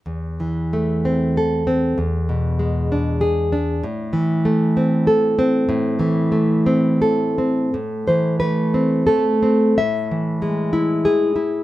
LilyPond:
\new Staff \with { instrumentName = "Nylon-string guitar" } { \time 3/4 \key a \minor \tempo 4 = 95 << { r2. | r2. | r2. | r2. |
r8 c''8 b'4 a'4 | e''2. | } \\ { e,8 e8 a8 c'8 a'8 c'8 | e,8 b,8 gis8 d'8 gis'8 d'8 | a,8 e8 a8 c'8 a'8 c'8 | a,8 e8 a8 c'8 a'8 c'8 |
a,8 e8 a8 c'8 a8 c'8 | a,8 e8 gis8 e'8 gis'8 e'8 | } >> }